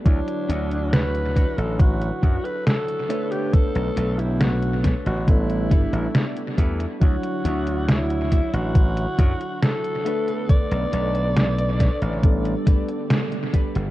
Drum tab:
HH |xxxxxxxxxxxxxxxx|xxxxxxxxxxxxxxxx|xxxxxxxxxxxxxxxx|xxxxxxxxxxxxxxxx|
SD |----o-------o---|----o-o-----o---|----o-------o---|----o-o-----o---|
BD |o-----o-o-o-----|o-----o-o-o---o-|o-----o-o-o-----|o-----o-o-o---o-|